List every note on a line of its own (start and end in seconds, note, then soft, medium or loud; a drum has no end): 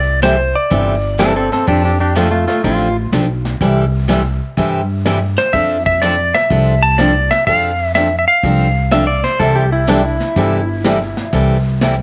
0.00 0.52 C2 medium
0.00 0.23 D5 medium
0.22 0.34 C3 medium
0.22 0.35 E3 medium
0.22 0.35 G3 medium
0.22 0.35 C4 medium
0.22 0.35 E4 medium
0.22 0.35 A4 medium
0.22 0.56 C5 medium
0.22 snare medium
0.22 hi-hat pedal soft
0.56 1.48 D5 medium
0.70 1.48 G1 medium
0.70 0.93 C3 medium
0.70 0.94 E3 medium
0.70 0.94 G3 medium
0.70 0.94 C4 medium
0.70 0.94 E4 medium
0.70 0.94 A4 medium
0.70 brush sweep soft
0.70 kick soft
1.18 1.31 C3 medium
1.18 1.31 E3 medium
1.18 1.31 G3 medium
1.18 1.35 C4 medium
1.18 1.31 C4 medium
1.18 1.32 E4 medium
1.18 1.32 A4 medium
1.18 1.35 A4 medium
1.18 snare medium
1.18 hi-hat pedal medium
1.36 1.51 C4 medium
1.36 1.52 A4 medium
1.52 1.67 C4 medium
1.52 1.68 A4 medium
1.52 snare soft
1.67 2.45 F2 medium
1.67 1.90 F3 medium
1.67 1.90 C4 medium
1.67 1.90 D4 medium
1.67 1.84 D4 medium
1.67 1.84 G4 medium
1.67 1.91 A4 medium
1.67 brush sweep soft
1.67 kick soft
1.85 1.99 D4 medium
1.85 2.00 G4 medium
2.00 2.15 D4 medium
2.00 2.16 G4 medium
2.15 2.28 F3 medium
2.15 2.30 A3 medium
2.15 2.28 C4 medium
2.15 2.28 D4 medium
2.15 2.30 F4 medium
2.15 2.28 A4 medium
2.15 snare medium
2.15 hi-hat pedal soft
2.31 2.46 A3 medium
2.31 2.46 F4 medium
2.47 2.63 A3 medium
2.47 2.63 F4 medium
2.47 snare soft
2.64 3.05 A1 medium
2.64 2.87 F3 medium
2.64 2.87 C4 medium
2.64 2.87 D4 medium
2.64 2.96 F4 medium
2.64 2.87 A4 medium
2.64 brush sweep soft
2.64 kick soft
3.12 3.53 B1 medium
3.12 3.25 F3 medium
3.12 3.25 C4 medium
3.12 3.25 D4 medium
3.12 3.25 A4 medium
3.12 snare medium
3.12 hi-hat pedal medium
3.45 snare soft
3.61 4.38 C2 medium
3.61 3.83 C3 medium
3.61 3.84 E3 medium
3.61 3.84 G3 medium
3.61 3.84 C4 medium
3.61 3.84 E4 medium
3.61 3.84 A4 medium
3.61 brush sweep medium
3.61 kick soft
4.08 4.21 C3 medium
4.08 4.21 E3 medium
4.08 4.21 G3 medium
4.08 4.21 C4 medium
4.08 4.21 E4 medium
4.08 4.21 A4 medium
4.08 snare medium
4.08 hi-hat pedal medium
4.57 5.35 G2 medium
4.57 4.80 C3 medium
4.57 4.80 E3 medium
4.57 4.80 G3 medium
4.57 4.80 C4 medium
4.57 4.80 E4 medium
4.57 4.81 A4 medium
4.57 brush sweep soft
4.57 kick soft
5.05 5.18 C3 medium
5.05 5.18 E3 medium
5.05 5.18 G3 medium
5.05 5.18 C4 medium
5.05 5.18 E4 medium
5.05 5.18 A4 medium
5.05 snare medium
5.05 hi-hat pedal medium
5.38 5.54 C5 medium
5.38 snare soft
5.53 6.31 F2 medium
5.53 5.76 F3 medium
5.53 5.76 C4 medium
5.53 5.77 D4 medium
5.53 5.77 A4 medium
5.53 5.85 E5 loud
5.53 brush sweep soft
5.53 kick soft
5.86 6.02 E5 medium
5.86 kick medium
6.02 6.14 F3 medium
6.02 6.14 C4 medium
6.02 6.15 D4 medium
6.02 6.15 A4 medium
6.02 6.35 D5 medium
6.02 snare medium
6.02 hi-hat pedal medium
6.34 6.84 E5 medium
6.34 snare medium
6.50 7.28 C2 medium
6.50 6.73 F3 medium
6.50 6.73 C4 medium
6.50 6.74 D4 medium
6.50 6.74 A4 medium
6.50 brush sweep soft
6.50 kick soft
6.83 6.99 A5 loud
6.98 7.11 F3 medium
6.98 7.11 C4 medium
6.98 7.11 D4 medium
6.98 7.11 A4 medium
6.98 7.32 D5 medium
6.98 snare medium
6.98 hi-hat pedal medium
7.31 7.46 E5 medium
7.31 snare soft
7.47 8.24 F2 medium
7.47 7.70 F3 medium
7.47 7.70 C4 medium
7.47 7.70 D4 medium
7.47 7.70 A4 medium
7.47 7.84 F5 loud
7.47 brush sweep medium
7.47 kick soft
7.84 7.95 E5 loud
7.95 8.07 F3 medium
7.95 8.07 C4 medium
7.95 8.08 D4 medium
7.95 8.08 A4 medium
7.95 8.17 E5 medium
7.95 snare medium
7.95 hi-hat pedal medium
8.19 8.27 E5 medium
8.28 9.20 F5 medium
8.43 9.21 C2 medium
8.43 8.66 F3 medium
8.43 8.67 C4 medium
8.43 8.67 D4 medium
8.43 8.67 A4 medium
8.43 brush sweep soft
8.43 kick soft
8.91 9.03 F3 medium
8.91 9.04 C4 medium
8.91 9.04 D4 medium
8.91 9.04 A4 medium
8.91 9.06 E5 medium
8.91 snare medium
8.91 hi-hat pedal medium
9.07 9.23 D5 medium
9.24 9.39 C5 medium
9.24 snare soft
9.40 10.17 C2 medium
9.40 9.63 C3 medium
9.40 9.63 E3 medium
9.40 9.63 G3 medium
9.40 9.63 C4 medium
9.40 9.63 E4 medium
9.40 9.55 A4 medium
9.40 9.63 A4 medium
9.40 brush sweep medium
9.40 kick soft
9.56 9.71 G4 medium
9.72 9.88 E4 medium
9.87 10.00 C3 medium
9.87 10.00 E3 medium
9.87 10.00 G3 medium
9.87 10.00 C4 medium
9.87 10.04 D4 medium
9.87 10.00 E4 medium
9.87 10.01 A4 medium
9.87 snare medium
9.87 hi-hat pedal medium
10.05 11.45 E4 medium
10.20 snare soft
10.36 11.14 G1 medium
10.36 10.59 C3 medium
10.36 10.60 E3 medium
10.36 10.60 G3 medium
10.36 10.60 C4 medium
10.36 10.60 E4 medium
10.36 10.60 A4 medium
10.36 brush sweep soft
10.36 kick soft
10.84 10.97 C3 medium
10.84 10.97 E3 medium
10.84 10.97 G3 medium
10.84 10.97 C4 medium
10.84 10.97 E4 medium
10.84 10.97 A4 medium
10.84 snare medium
10.84 hi-hat pedal medium
11.17 snare soft
11.33 12.02 C2 medium
11.33 11.56 C3 medium
11.33 11.56 E3 medium
11.33 11.56 G3 medium
11.33 11.56 C4 medium
11.33 11.56 E4 medium
11.33 11.56 A4 medium
11.33 brush sweep medium
11.33 kick soft
11.81 11.94 C3 medium
11.81 11.94 E3 medium
11.81 11.94 G3 medium
11.81 11.94 C4 medium
11.81 11.94 E4 medium
11.81 11.94 A4 medium
11.81 snare medium
11.81 hi-hat pedal medium